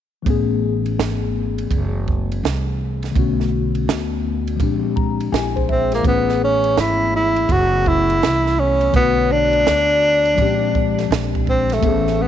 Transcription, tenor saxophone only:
0, 0, Header, 1, 2, 480
1, 0, Start_track
1, 0, Key_signature, 3, "major"
1, 0, Tempo, 722892
1, 176, Time_signature, 4, 2, 24, 8
1, 8153, End_track
2, 0, Start_track
2, 0, Title_t, "Tenor saxophone"
2, 0, Program_c, 0, 66
2, 3796, Note_on_c, 0, 60, 76
2, 3930, Note_off_c, 0, 60, 0
2, 3948, Note_on_c, 0, 58, 68
2, 4020, Note_off_c, 0, 58, 0
2, 4033, Note_on_c, 0, 59, 78
2, 4248, Note_off_c, 0, 59, 0
2, 4277, Note_on_c, 0, 61, 93
2, 4517, Note_on_c, 0, 64, 101
2, 4527, Note_off_c, 0, 61, 0
2, 4747, Note_off_c, 0, 64, 0
2, 4755, Note_on_c, 0, 64, 97
2, 4993, Note_on_c, 0, 66, 105
2, 5003, Note_off_c, 0, 64, 0
2, 5233, Note_on_c, 0, 64, 104
2, 5242, Note_off_c, 0, 66, 0
2, 5707, Note_on_c, 0, 61, 94
2, 5717, Note_off_c, 0, 64, 0
2, 5941, Note_off_c, 0, 61, 0
2, 5949, Note_on_c, 0, 59, 97
2, 6186, Note_on_c, 0, 62, 127
2, 6196, Note_off_c, 0, 59, 0
2, 7459, Note_off_c, 0, 62, 0
2, 7632, Note_on_c, 0, 60, 85
2, 7789, Note_on_c, 0, 57, 83
2, 7799, Note_off_c, 0, 60, 0
2, 8113, Note_on_c, 0, 59, 89
2, 8123, Note_off_c, 0, 57, 0
2, 8153, Note_off_c, 0, 59, 0
2, 8153, End_track
0, 0, End_of_file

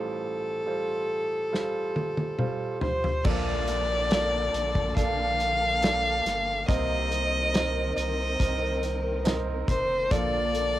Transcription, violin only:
0, 0, Header, 1, 2, 480
1, 0, Start_track
1, 0, Key_signature, -2, "major"
1, 0, Tempo, 857143
1, 1820, Time_signature, 4, 2, 24, 8
1, 6045, End_track
2, 0, Start_track
2, 0, Title_t, "Violin"
2, 0, Program_c, 0, 40
2, 0, Note_on_c, 0, 69, 79
2, 1576, Note_off_c, 0, 69, 0
2, 1583, Note_on_c, 0, 72, 72
2, 1816, Note_on_c, 0, 74, 100
2, 1824, Note_off_c, 0, 72, 0
2, 2769, Note_on_c, 0, 77, 114
2, 2778, Note_off_c, 0, 74, 0
2, 3734, Note_on_c, 0, 75, 103
2, 3742, Note_off_c, 0, 77, 0
2, 4457, Note_off_c, 0, 75, 0
2, 4460, Note_on_c, 0, 75, 90
2, 5157, Note_off_c, 0, 75, 0
2, 5427, Note_on_c, 0, 72, 88
2, 5666, Note_on_c, 0, 74, 116
2, 5675, Note_off_c, 0, 72, 0
2, 6045, Note_off_c, 0, 74, 0
2, 6045, End_track
0, 0, End_of_file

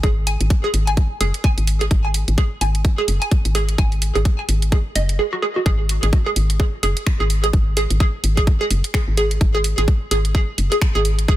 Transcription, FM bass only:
0, 0, Header, 1, 2, 480
1, 0, Start_track
1, 0, Tempo, 468750
1, 35, Time_signature, 4, 2, 24, 8
1, 11639, End_track
2, 0, Start_track
2, 0, Title_t, "FM bass"
2, 0, Program_c, 0, 39
2, 36, Note_on_c, 0, 32, 105
2, 372, Note_off_c, 0, 32, 0
2, 415, Note_on_c, 0, 32, 92
2, 496, Note_off_c, 0, 32, 0
2, 755, Note_on_c, 0, 32, 87
2, 1092, Note_off_c, 0, 32, 0
2, 1235, Note_on_c, 0, 30, 83
2, 1348, Note_off_c, 0, 30, 0
2, 1615, Note_on_c, 0, 32, 83
2, 1924, Note_off_c, 0, 32, 0
2, 1955, Note_on_c, 0, 32, 98
2, 2292, Note_off_c, 0, 32, 0
2, 2335, Note_on_c, 0, 32, 91
2, 2416, Note_off_c, 0, 32, 0
2, 2675, Note_on_c, 0, 32, 87
2, 3012, Note_off_c, 0, 32, 0
2, 3154, Note_on_c, 0, 30, 85
2, 3268, Note_off_c, 0, 30, 0
2, 3534, Note_on_c, 0, 32, 86
2, 3844, Note_off_c, 0, 32, 0
2, 3874, Note_on_c, 0, 32, 101
2, 4212, Note_off_c, 0, 32, 0
2, 4254, Note_on_c, 0, 32, 92
2, 4336, Note_off_c, 0, 32, 0
2, 4594, Note_on_c, 0, 32, 85
2, 4932, Note_off_c, 0, 32, 0
2, 5075, Note_on_c, 0, 30, 84
2, 5315, Note_off_c, 0, 30, 0
2, 5795, Note_on_c, 0, 32, 103
2, 6132, Note_off_c, 0, 32, 0
2, 6174, Note_on_c, 0, 32, 96
2, 6256, Note_off_c, 0, 32, 0
2, 6515, Note_on_c, 0, 32, 88
2, 6852, Note_off_c, 0, 32, 0
2, 6995, Note_on_c, 0, 30, 85
2, 7108, Note_off_c, 0, 30, 0
2, 7374, Note_on_c, 0, 32, 89
2, 7684, Note_off_c, 0, 32, 0
2, 7715, Note_on_c, 0, 32, 105
2, 8052, Note_off_c, 0, 32, 0
2, 8094, Note_on_c, 0, 32, 95
2, 8176, Note_off_c, 0, 32, 0
2, 8435, Note_on_c, 0, 32, 85
2, 8772, Note_off_c, 0, 32, 0
2, 8915, Note_on_c, 0, 30, 88
2, 9028, Note_off_c, 0, 30, 0
2, 9295, Note_on_c, 0, 32, 84
2, 9604, Note_off_c, 0, 32, 0
2, 9635, Note_on_c, 0, 32, 102
2, 9972, Note_off_c, 0, 32, 0
2, 10015, Note_on_c, 0, 32, 95
2, 10096, Note_off_c, 0, 32, 0
2, 10356, Note_on_c, 0, 32, 89
2, 10692, Note_off_c, 0, 32, 0
2, 10836, Note_on_c, 0, 30, 87
2, 10948, Note_off_c, 0, 30, 0
2, 11216, Note_on_c, 0, 32, 90
2, 11525, Note_off_c, 0, 32, 0
2, 11555, Note_on_c, 0, 32, 100
2, 11639, Note_off_c, 0, 32, 0
2, 11639, End_track
0, 0, End_of_file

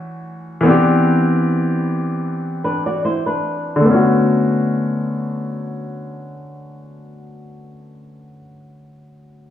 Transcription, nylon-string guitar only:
0, 0, Header, 1, 2, 480
1, 0, Start_track
1, 0, Key_signature, 2, "minor"
1, 0, Tempo, 800000
1, 386, Time_signature, 4, 2, 24, 8
1, 5702, End_track
2, 0, Start_track
2, 0, Title_t, "Nylon-string guitar"
2, 0, Program_c, 0, 24
2, 1586, Note_on_c, 0, 71, 73
2, 1590, Note_on_c, 0, 62, 60
2, 1709, Note_off_c, 0, 71, 0
2, 1711, Note_off_c, 0, 62, 0
2, 1717, Note_on_c, 0, 74, 75
2, 1720, Note_on_c, 0, 66, 65
2, 1821, Note_off_c, 0, 74, 0
2, 1823, Note_off_c, 0, 66, 0
2, 1828, Note_on_c, 0, 72, 77
2, 1831, Note_on_c, 0, 64, 65
2, 1950, Note_off_c, 0, 72, 0
2, 1952, Note_off_c, 0, 64, 0
2, 1957, Note_on_c, 0, 71, 73
2, 1961, Note_on_c, 0, 62, 63
2, 2290, Note_off_c, 0, 71, 0
2, 2291, Note_off_c, 0, 62, 0
2, 5702, End_track
0, 0, End_of_file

